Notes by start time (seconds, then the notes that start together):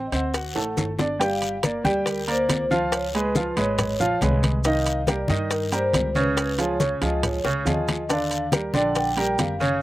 0.07 D#5
0.12 D2 C4 C5 F#5, high bongo, high conga, high timbale, short guiro, maracas
0.34 F#4 F#5, high bongo, high conga, high timbale, long guiro, maracas
0.55 A1 A3 A4, high bongo, high conga, high timbale
0.77 G1, high bongo, high conga, high timbale, short guiro, maracas
0.99 D4 D5, low bongo, high conga, low timbale, short guiro, maracas
1.20 G3 G4 F5 G5, high bongo, high conga, high timbale, long guiro, maracas
1.42 high conga, high timbale, maracas
1.63 A#3 A#4 D5, high bongo, high conga, high timbale, short guiro, maracas
1.84 D2 G3 G4 G5, high bongo, high conga, short guiro, maracas
2.06 A#4, high bongo, high conga, high timbale, long guiro, maracas
2.27 A#3 A#4 C5 D5, high bongo, high conga, high timbale
2.49 C#2, high bongo, low bongo, high conga, high timbale, low timbale, short guiro, maracas
2.70 F3 F4 F5, high bongo, high conga, short guiro, maracas
2.92 C#5, high bongo, high conga, high timbale, long guiro, maracas
3.14 G#3 G#4 B4, high conga, high timbale
3.35 F3 F4 F5, high bongo, high conga, short guiro, maracas
3.57 G#1 G#3 G#4 B4 C#5, high bongo, high conga, high timbale, short guiro, maracas
3.78 high bongo, high conga, low conga, high timbale, long guiro, maracas
4.00 A#1 F3 F4 F5, high bongo, high conga, low conga, maracas
4.21 C2 G#3 G#4 B4, high bongo, low bongo, high conga, high timbale, low timbale, short guiro, maracas
4.43 high bongo, high conga, high timbale, short guiro, maracas
4.64 D#3 D#4 D#5 F5, high bongo, high timbale, long guiro, maracas
4.86 high conga, high timbale, maracas
5.07 G3 G4 A#4 D5, high bongo, high conga, high timbale, short guiro, maracas
5.28 G2 D#3 D#4 D#5, high bongo, high conga, short guiro, maracas
5.50 A#4, high bongo, high conga, high timbale, long guiro, maracas
5.72 G3 G4 A#4 C5, high bongo, high conga, high timbale, maracas
5.93 C#2, high bongo, low bongo, high conga, high timbale, low timbale, short guiro, maracas
6.15 C#3 C#4 B4 C#5, high bongo, high conga, short guiro, maracas
6.36 high bongo, high conga, high timbale, long guiro, maracas
6.58 F3 F4 G#4 C#5, high conga, high timbale, maracas
6.80 C#3 C#4 C#5, high bongo, high conga, short guiro, maracas
7.01 C#2 F3 F4 G#4 D#5, high bongo, high conga, high timbale, short guiro, maracas
7.23 C#5, high bongo, high conga, low conga, high timbale, long guiro, maracas
7.45 C#2 C#3 C#4 C#5, high bongo, high conga
7.65 D#2 F3 F4 G#4 D#5, high conga, high timbale, low timbale, short guiro, maracas
7.88 low bongo, high conga, high timbale, short guiro, maracas
8.09 D3 D4 D5 F5, high bongo, high conga, high timbale, long guiro, maracas
8.31 high conga, high timbale, maracas
8.52 G3 G4 A#4, high bongo, high conga, high timbale, short guiro, maracas
8.74 A#1 D3 D4 D5 G5, high bongo, high conga, short guiro, maracas
8.89 F#5
8.95 G5, high bongo, high conga, high timbale, long guiro, maracas
9.17 G3 G4 A#4, high bongo, high conga, high timbale
9.38 F#1 F5, high bongo, low bongo, high conga, high timbale, low timbale, short guiro, maracas
9.60 C#3 C#4 C#5, high bongo, high conga, short guiro, maracas